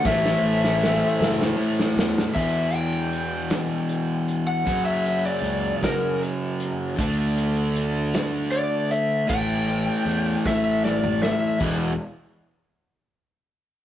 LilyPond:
<<
  \new Staff \with { instrumentName = "Lead electric guitar" } { \time 6/8 \key a \major \tempo 4. = 52 e''2 r4 | e''8 g''2~ g''16 fis''16~ | fis''16 e''8 d''8. ais'8 r4 | r2 d''8 e''8 |
g''4. e''8 d''8 e''8 | r2. | }
  \new Staff \with { instrumentName = "String machine" } { \time 6/8 \key a \major <a e' c''>2. | r2. | r2. | r2. |
r2. | r2. | }
  \new Staff \with { instrumentName = "Distorted electric guitar" } { \clef bass \time 6/8 \key a \major <a, e a>2 <a, e a>4 | <e, b, e>2. | <fis, cis fis>2. | <d a d'>2. |
<a, e a>2. | <e, b, e>8 r2 r8 | }
  \new Staff \with { instrumentName = "Distorted electric guitar" } { \clef bass \time 6/8 \key a \major <a, e a>2. | <e, b, e>2. | <fis, cis fis>2. | <d a d'>2. |
<a, e a>2. | <e, b, e>8 r2 r8 | }
  \new Staff \with { instrumentName = "Fingered electric bass" } { \clef bass \time 6/8 \key a \major a,,8 a,,4 fis,,8 r8 e,8 | e,2 r4 | fis,4 cis,8 fis,4. | d,2 r4 |
a,,4 e,8 a,,4. | e,,8 r2 r8 | }
  \new DrumStaff \with { instrumentName = "Drums" } \drummode { \time 6/8 <bd sn>16 sn8 sn16 sn8 sn16 sn8 sn16 sn16 sn16 | <cymc bd>8 hh8 hh8 <hh sn>8 hh8 hh8 | <hh bd>8 hh8 hh8 <hh bd sn>8 hh8 hh8 | <hh bd>8 hh8 hh8 <hh sn>8 hh8 hh8 |
<hh bd>8 hh8 hh8 <bd sn>8 sn16 toml16 sn8 | <cymc bd>4. r4. | }
>>